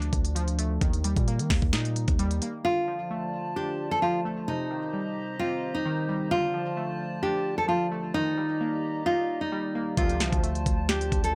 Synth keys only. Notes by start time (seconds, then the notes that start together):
Already playing: D3 F3 A3 D4
0.35 F3
0.59 A3
0.81 D#3
1.05 G3
1.28 A#3
1.73 D#4
2.19 G3
2.42 A#3
2.64 D3
2.88 F3
3.10 A3
3.56 D4
4.03 F3
4.25 A3
4.48 C3
4.71 D#3
4.93 G3
5.40 C4
5.85 D#3
6.09 G3
6.31 D3
6.54 F3
6.77 A3
7.23 D4
7.68 F3
7.91 A3
8.14 D#3
8.37 G3
8.61 A#3
9.06 D#4
9.52 G3
9.75 A#3
9.97 D3
10.20 F3
10.43 A3
10.89 D4